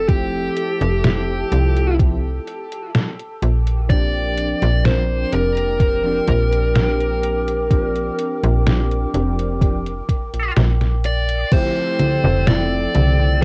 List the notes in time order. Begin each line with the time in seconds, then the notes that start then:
Already playing: F1 A4 E6
0.08 F3 A3 C4 E4 G4 A5, kick, closed hi-hat
0.57 closed hi-hat
0.81 F1, closed hi-hat
1.03 F3 A3 C4 E4 G4, snare, closed hi-hat
1.51 C2 F3 A3 C4 E4 G4, closed hi-hat
1.77 closed hi-hat
1.99 F3 A3 C4 E4 G4, kick, closed hi-hat
2.47 closed hi-hat
2.72 closed hi-hat
2.95 snare, closed hi-hat
3.19 closed hi-hat
3.42 A#1 A#4 G5 D6, closed hi-hat
3.67 closed hi-hat
3.90 F3 A#3 C4 D4 G4 D5, kick, closed hi-hat
4.37 closed hi-hat
4.62 A#1, closed hi-hat
4.85 F3 A#3 C4 D4 A#4 C5, snare, closed hi-hat
5.32 F1 F3 A#3 C4 D4 G4 A#4, closed hi-hat
5.57 closed hi-hat
5.80 kick, closed hi-hat
6.03 F3 A#3 C4 D4 G4
6.28 A#1, kick, closed hi-hat
6.53 closed hi-hat
6.76 snare, closed hi-hat
7.00 closed hi-hat
7.23 closed hi-hat
7.48 closed hi-hat
7.70 F3 A#3 C4 D4 G4, kick, closed hi-hat
7.96 closed hi-hat
8.19 closed hi-hat
8.43 A#1, closed hi-hat
8.65 F3 A#3 C4 D4 G4, snare, closed hi-hat
8.91 closed hi-hat
9.13 F1 F3 A#3 C4 D4 G4, closed hi-hat
9.39 closed hi-hat
9.60 F3 A#3 C4 D4 G4, kick, closed hi-hat
9.86 closed hi-hat
10.09 kick, closed hi-hat
10.34 A#1, closed hi-hat
10.57 A#1, snare, closed hi-hat
10.81 snare, closed hi-hat
11.04 D5, closed hi-hat
11.29 closed hi-hat
11.52 F3 A3 C4 E4 G4 A4 C5 G5 E6, kick, closed hi-hat, crash, high conga
11.99 closed hi-hat, high conga
12.24 F1, high conga
12.47 F3 A3 C4 E4 A4 D5, snare, closed hi-hat, high conga
12.94 C2 F3 A3 C4 E4 G4, closed hi-hat, high conga
13.19 high conga